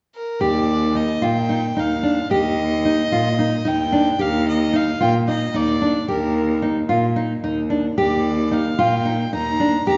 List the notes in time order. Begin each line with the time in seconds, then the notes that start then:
0.15 A#4
0.41 D#2 G4 D5
0.95 D#4 D#5
1.22 A#2 F4 G5
1.49 D#4
1.77 D#2 D#4 F5
2.03 D4
2.30 D#2 G4 D#5
2.85 D#4
3.11 A#2 F4
3.39 D#4
3.65 D#2 D#4 G5
3.92 D4
4.19 D#2 G4 F5
4.48 D#5
4.73 D#4 F5
5.01 A#2 F4 G5
5.28 D#4 D#5
5.54 D#2 D#4 D5
5.82 D4
6.08 D#2 G4 A#4
6.62 D#4
6.89 A#2 F4
7.16 D#4
7.44 D#2 D#4
7.70 D4
7.98 D#2 G4 D5
8.51 D#4 F5
8.79 A#2 F4 G5
9.05 D#4
9.33 D#2 D#4 A#5
9.60 D4
9.87 D#2 G4 A#5